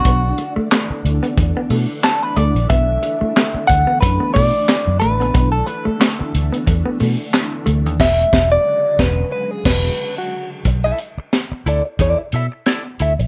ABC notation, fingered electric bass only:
X:1
M:4/4
L:1/16
Q:"Swing 16ths" 1/4=91
K:Bdor
V:1 name="Fingered electric bass" clef=bass
B,,,2 z4 D,, z E,, z B,, z3 D,, ^A,,, | B,,,2 z4 D,, z F,, z B,, z2 F,, A,,, ^A,,, | B,,,2 z4 D,, z E,, z B,, z3 D,, ^D,, | E,,,2 E,,,2 z2 E,,,2 z2 E,,,2 z4 |
B,,,2 z4 D,, z E,, z B,, z3 D,, ^A,,, |]